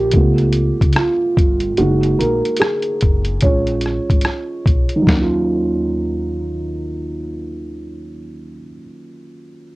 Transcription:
Already playing: upright bass A#1, felt piano C#4 F4 F#4 G4 A#4
0.12 upright bass C#2, felt piano A3 B3 F4, kick, closed hi-hat
0.38 closed hi-hat
0.53 closed hi-hat
0.81 upright bass C#2, kick, closed hi-hat
0.93 felt piano F4, cross-stick, closed hi-hat
1.37 upright bass G1, kick, closed hi-hat
1.60 closed hi-hat
1.77 upright bass F#1, felt piano G#3 A#3 D#4 F#4, closed hi-hat
2.03 closed hi-hat
2.19 upright bass A#1, felt piano A#4, closed hi-hat
2.45 closed hi-hat
2.57 felt piano G#4, closed hi-hat
2.62 cross-stick
2.82 closed hi-hat
3.01 upright bass F#1, kick, closed hi-hat
3.25 closed hi-hat
3.41 upright bass A#1, felt piano G#3 C#4 F4 C#5, kick, closed hi-hat
3.67 closed hi-hat
3.81 closed hi-hat
3.86 cross-stick
4.10 upright bass G#1, kick, closed hi-hat
4.21 cross-stick, closed hi-hat
4.66 upright bass B1, kick, closed hi-hat
4.89 closed hi-hat
4.96 felt piano D#3
5.02 felt piano F#3
5.07 upright bass D#2, felt piano A#3, kick, snare
5.15 felt piano C#4
5.21 felt piano F4

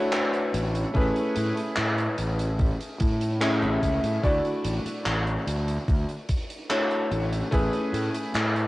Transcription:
Already playing: electric grand piano A3 D4 E4 F#4 C#5
0.12 electric grand piano A3 D4 E4 F#4 B4, clap, closed hi-hat
0.33 closed hi-hat
0.54 fingered electric bass A1, closed hi-hat
0.75 closed hi-hat
0.94 fingered electric bass A1, electric grand piano A3 C#4 E4 G#4 B4, kick, closed hi-hat
1.16 closed hi-hat
1.36 fingered electric bass A2, closed hi-hat
1.57 closed hi-hat
1.76 fingered electric bass A2, clap, closed hi-hat
1.98 closed hi-hat
2.18 fingered electric bass A1, closed hi-hat
2.39 closed hi-hat
2.59 kick, closed hi-hat
2.81 closed hi-hat
3.00 fingered electric bass A2, kick, closed hi-hat
3.21 closed hi-hat
3.41 electric grand piano A3 C#4 E4 G#4 E5, clap, closed hi-hat
3.62 fingered electric bass A1, closed hi-hat
3.83 fingered electric bass C#2, kick, closed hi-hat
4.03 fingered electric bass A2, closed hi-hat
4.23 fingered electric bass D2, electric grand piano A3 D4 E4 F#4 D5, kick, closed hi-hat
4.45 closed hi-hat
4.65 fingered electric bass A1, closed hi-hat
4.86 muted fingered electric bass stroke, closed hi-hat
5.06 fingered electric bass A1, clap, closed hi-hat
5.27 closed hi-hat
5.47 fingered electric bass D2, closed hi-hat
5.68 closed hi-hat
5.88 fingered electric bass D2, kick, closed hi-hat
6.09 closed hi-hat
6.29 kick, closed hi-hat
6.50 closed hi-hat
6.69 electric grand piano A3 D4 E4 F#4 C#5, clap, closed hi-hat
6.91 closed hi-hat
7.11 fingered electric bass A1, closed hi-hat
7.33 closed hi-hat
7.51 fingered electric bass A1, electric grand piano A3 C#4 E4 G#4 B4, kick, closed hi-hat
7.73 closed hi-hat
7.93 fingered electric bass A2, closed hi-hat
8.15 closed hi-hat
8.34 fingered electric bass A2, clap, closed hi-hat
8.56 closed hi-hat

